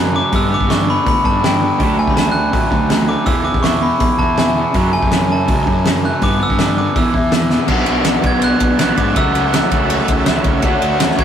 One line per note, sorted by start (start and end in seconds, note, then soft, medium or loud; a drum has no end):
0.00 0.12 F#2 medium
0.00 0.21 F#2 medium
0.00 0.12 C#3 medium
0.00 0.32 F#3 medium
0.00 0.13 A3 medium
0.00 0.31 C#4 medium
0.14 0.30 F#2 medium
0.14 0.30 C#3 medium
0.14 0.32 A3 medium
0.14 0.33 D6 medium
0.32 0.49 G2 medium
0.32 0.54 G2 medium
0.32 0.49 D3 medium
0.32 0.50 G3 medium
0.32 0.49 B3 medium
0.32 0.53 E6 medium
0.32 kick medium
0.32 open hi-hat soft
0.50 0.67 G2 medium
0.50 0.67 D3 medium
0.50 0.86 B3 medium
0.54 0.71 D6 loud
0.60 0.97 G2 medium
0.60 kick medium
0.68 0.85 G2 medium
0.68 0.85 D3 medium
0.68 1.25 D4 medium
0.68 0.88 C#6 medium
0.68 snare loud
0.68 open hi-hat soft
0.87 1.04 G2 medium
0.87 1.04 D3 medium
0.87 1.05 B3 medium
0.87 1.07 B5 medium
1.06 1.14 D2 medium
1.06 1.22 G2 medium
1.06 1.22 D3 medium
1.06 1.42 B3 medium
1.06 1.26 B5 medium
1.06 kick loud
1.06 open hi-hat soft
1.23 1.40 G2 medium
1.23 1.69 G2 medium
1.23 1.40 D3 medium
1.23 1.80 D4 medium
1.23 1.44 A5 medium
1.23 kick medium
1.41 1.58 G2 medium
1.41 1.58 D3 medium
1.41 1.60 B3 medium
1.41 1.69 G5 medium
1.41 snare loud
1.41 open hi-hat soft
1.61 1.78 G2 medium
1.61 1.77 D3 medium
1.61 1.79 B3 medium
1.79 2.02 D2 loud
1.79 1.96 D3 medium
1.79 2.51 F#3 medium
1.79 1.97 A3 medium
1.79 1.97 D4 medium
1.79 kick medium
1.79 open hi-hat soft
1.97 2.14 D3 medium
1.97 2.14 A3 medium
1.97 2.34 A3 medium
1.97 2.13 G#5 medium
2.07 2.54 D2 medium
2.07 2.15 B5 medium
2.07 kick medium
2.15 2.32 D3 medium
2.15 2.33 A3 medium
2.15 2.69 D4 medium
2.15 2.34 A5 medium
2.15 snare loud
2.15 open hi-hat medium
2.32 2.50 D3 medium
2.32 2.51 A3 medium
2.32 3.06 A3 medium
2.32 2.84 F#6 medium
2.52 2.68 A1 medium
2.52 2.69 D3 medium
2.52 2.89 F#3 medium
2.52 2.70 A3 medium
2.52 kick medium
2.52 open hi-hat soft
2.70 3.16 D2 medium
2.70 2.87 D3 medium
2.70 2.88 A3 medium
2.70 3.26 D4 medium
2.70 kick medium
2.89 3.06 D3 medium
2.89 3.25 F#3 medium
2.89 3.06 A3 medium
2.89 snare loud
2.89 open hi-hat medium
3.07 3.25 D3 medium
3.07 3.26 A3 medium
3.07 3.25 A3 medium
3.07 3.27 D6 medium
3.25 3.43 E2 medium
3.25 3.49 E2 loud
3.25 3.43 B2 medium
3.25 4.00 E3 medium
3.25 3.44 E3 medium
3.25 3.45 E6 medium
3.25 kick loud
3.25 open hi-hat soft
3.44 3.61 E2 medium
3.44 3.61 B2 medium
3.44 3.81 B3 medium
3.44 3.64 D6 medium
3.54 3.91 E2 medium
3.54 kick medium
3.63 3.80 E2 medium
3.63 3.80 B2 medium
3.63 4.18 E4 medium
3.63 3.82 C#6 medium
3.63 snare loud
3.63 open hi-hat medium
3.82 3.99 E2 medium
3.82 3.98 B2 medium
3.82 4.55 B3 medium
3.82 3.99 B5 medium
4.00 4.08 B1 medium
4.00 4.17 E2 medium
4.00 4.18 B2 medium
4.00 4.36 E3 medium
4.00 4.19 B5 medium
4.00 kick medium
4.00 open hi-hat soft
4.19 4.35 E2 medium
4.19 4.63 E2 medium
4.19 4.36 B2 medium
4.19 4.74 E4 medium
4.19 4.38 A5 medium
4.19 kick medium
4.37 4.54 E2 medium
4.37 4.54 B2 medium
4.37 4.73 E3 medium
4.37 4.64 G#5 medium
4.37 snare loud
4.37 open hi-hat soft
4.56 4.72 E2 medium
4.56 4.73 B2 medium
4.56 4.74 B3 medium
4.74 4.91 F#2 medium
4.74 4.97 F#2 loud
4.74 4.91 C#3 medium
4.74 5.46 F#3 medium
4.74 4.92 F#3 medium
4.74 kick medium
4.74 open hi-hat soft
4.92 5.09 F#2 medium
4.92 5.09 C#3 medium
4.92 5.29 A3 medium
4.92 5.31 G#5 medium
5.02 5.50 F#2 medium
5.02 kick medium
5.11 5.28 F#2 medium
5.11 5.29 C#3 medium
5.11 5.66 C#4 medium
5.11 snare loud
5.11 open hi-hat soft
5.30 5.46 F#2 medium
5.30 5.46 C#3 medium
5.30 6.03 A3 medium
5.30 6.07 A5 medium
5.47 5.63 C#2 medium
5.47 5.64 F#2 medium
5.47 5.65 C#3 medium
5.47 5.85 F#3 medium
5.47 kick loud
5.47 open hi-hat soft
5.66 5.83 F#2 medium
5.66 6.11 F#2 medium
5.66 5.83 C#3 medium
5.66 6.22 C#4 medium
5.66 kick medium
5.84 6.01 F#2 medium
5.84 6.01 C#3 medium
5.84 6.22 F#3 medium
5.84 snare loud
5.84 open hi-hat soft
6.04 6.20 F#2 medium
6.04 6.20 C#3 medium
6.04 6.21 A3 medium
6.04 6.23 F#6 medium
6.21 6.39 G2 medium
6.21 6.44 G2 loud
6.21 6.38 D3 medium
6.21 6.39 G3 medium
6.21 6.41 B3 medium
6.21 6.41 D6 loud
6.21 kick medium
6.21 open hi-hat soft
6.39 6.56 G2 medium
6.39 6.56 D3 medium
6.39 6.76 B3 medium
6.39 6.59 E6 medium
6.50 6.86 G2 medium
6.50 kick medium
6.58 6.75 G2 medium
6.58 6.75 D3 medium
6.58 6.95 D4 medium
6.58 6.77 D6 medium
6.58 snare loud
6.58 open hi-hat soft
6.77 6.94 G2 medium
6.77 6.94 D3 medium
6.77 6.95 B3 medium
6.77 6.96 D6 medium
6.95 7.13 E2 medium
6.95 7.03 E2 medium
6.95 7.13 B2 medium
6.95 7.30 E3 medium
6.95 7.13 E3 loud
6.95 7.30 E6 medium
6.95 kick loud
6.95 open hi-hat soft
7.13 7.30 E2 medium
7.13 7.58 E2 medium
7.13 7.30 B2 medium
7.13 7.68 E4 medium
7.13 kick medium
7.31 7.49 E2 medium
7.31 7.49 B2 medium
7.31 7.69 E3 medium
7.31 snare loud
7.31 open hi-hat medium
7.50 7.67 E2 medium
7.50 7.66 B2 medium
7.50 7.65 B3 medium
7.50 snare medium
7.66 7.84 B1 loud
7.66 8.22 B2 medium
7.66 8.24 F#3 medium
7.66 9.13 B3 medium
7.66 8.22 B3 medium
7.66 9.14 D4 medium
7.66 8.22 D4 medium
7.66 10.60 F#4 medium
7.66 9.17 F#4 medium
7.66 9.14 B4 medium
7.66 9.14 D5 medium
7.66 10.59 A5 medium
7.66 kick loud
7.66 crash medium
7.70 8.22 F#4 medium
7.86 8.17 B1 medium
7.86 ride medium
8.05 snare loud
8.05 ride medium
8.22 8.53 B1 medium
8.22 8.77 B2 medium
8.22 8.79 F#3 medium
8.22 8.78 B3 medium
8.22 8.77 D4 medium
8.22 8.82 F#4 medium
8.22 kick medium
8.22 ride medium
8.27 8.44 G#6 loud
8.42 8.80 F#6 loud
8.42 ride medium
8.60 8.90 B1 medium
8.60 kick medium
8.60 ride medium
8.78 9.14 B2 medium
8.78 9.15 F#3 medium
8.78 9.15 B3 medium
8.78 9.16 D4 medium
8.78 8.99 F#6 loud
8.78 snare loud
8.78 ride medium
8.82 9.17 F#4 medium
8.97 9.12 G#2 medium
8.97 9.16 D6 medium
8.97 kick medium
8.97 ride medium
9.14 9.60 C#2 medium
9.14 9.69 C#3 medium
9.14 9.73 F#3 medium
9.14 10.62 A3 medium
9.14 9.73 A3 medium
9.14 10.64 C#4 medium
9.14 9.71 C#4 medium
9.14 9.54 E6 loud
9.14 kick medium
9.14 ride medium
9.18 9.71 F#4 medium
9.18 10.63 F#4 medium
9.18 11.24 C#5 medium
9.18 10.63 E5 medium
9.35 ride medium
9.53 9.87 F#6 medium
9.53 snare loud
9.53 ride loud
9.71 10.00 C#2 medium
9.71 10.24 C#3 medium
9.71 10.26 F#3 medium
9.71 10.27 A3 medium
9.71 10.28 C#4 medium
9.71 10.25 F#4 medium
9.71 kick medium
9.71 ride medium
9.90 ride loud
10.08 10.38 C#2 loud
10.08 kick medium
10.08 ride medium
10.26 10.62 C#3 medium
10.26 10.62 F#3 medium
10.26 10.64 A3 medium
10.26 10.64 C#4 medium
10.26 10.63 F#4 medium
10.26 snare loud
10.26 ride medium
10.44 10.60 C#2 medium
10.44 kick medium
10.44 ride medium
10.62 10.78 D2 loud
10.62 11.17 D3 medium
10.62 11.24 A3 medium
10.62 11.19 A3 medium
10.62 11.17 D4 medium
10.62 11.24 D4 medium
10.62 11.24 F#4 medium
10.62 11.16 F#4 loud
10.62 11.24 A4 medium
10.62 11.24 D5 medium
10.62 kick medium
10.62 ride medium
10.67 11.24 F#4 loud
10.81 11.11 D2 loud
10.81 ride medium
11.00 snare loud
11.00 ride loud
11.10 snare soft
11.17 11.24 D2 medium
11.17 11.24 D3 medium
11.17 11.24 A3 medium
11.17 11.24 D4 medium
11.17 11.24 F#4 medium
11.17 11.24 G#6 medium
11.17 kick medium
11.17 ride medium